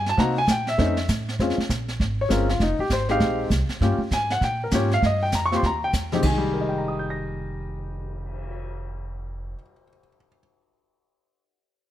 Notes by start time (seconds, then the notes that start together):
Already playing: G2
0.06 A5, snare
0.17 C3 A#3 C4 D#4 F#4 A#5, brush sweep, kick, snare
0.38 G#5
0.47 A#2 G5, kick, snare, hi-hat pedal
0.67 E5, snare
0.78 F2 A3 C4 C#4 D#4, brush sweep, kick, snare
0.97 snare
1.08 A2, kick, snare, hi-hat pedal
1.29 snare
1.39 F2 G#3 C4 C#4 F4, brush sweep, kick, snare
1.50 snare
1.58 muted upright bass stroke, snare
1.69 A#1, kick, snare, hi-hat pedal
1.88 snare
2.00 G#1, brush sweep, kick, snare
2.21 C#5
2.29 G1 G#3 C4 C#4 F4 A#4, kick, snare, hi-hat pedal
2.49 F4, snare
2.60 F1 D#4, brush sweep, kick, snare
2.79 G4, muted upright bass stroke
2.90 G#1 C5, kick, snare, hi-hat pedal
3.09 G#3 C4 D#4 G4 F5, snare
3.20 A#1, brush sweep, kick, snare
3.50 C2, kick, snare, hi-hat pedal
3.69 muted upright bass stroke, snare
3.80 G2 A#3 C#4 F4 G4, brush sweep, kick, snare
3.98 muted upright bass stroke
4.11 G#2 G#5, kick, snare, hi-hat pedal
4.30 F#5, snare
4.41 A#2 G5, brush sweep, kick, snare
4.64 A#4
4.71 G#2 A#3 C#4 F4 G4, kick, snare, hi-hat pedal
4.75 C#5
4.91 F5, snare
5.02 G2 D#5, brush sweep, kick, snare
5.23 G5
5.32 F2 A#5, kick, snare, hi-hat pedal
5.46 C#6
5.52 A#3 C4 F4 G4, snare
5.56 C6
5.62 D#2 A#5, brush sweep, kick, snare
5.84 G5
5.93 E2, kick, snare, hi-hat pedal
6.12 F2 G#3 C4 D#4 G4, snare
6.21 F1 D#3, kick, crash
6.25 G#3 G#5
6.38 G3
6.42 cymbal swell
6.54 A#4
6.61 D#5
6.69 G5
6.78 A#5
6.88 D#6
6.99 G6
7.10 A#6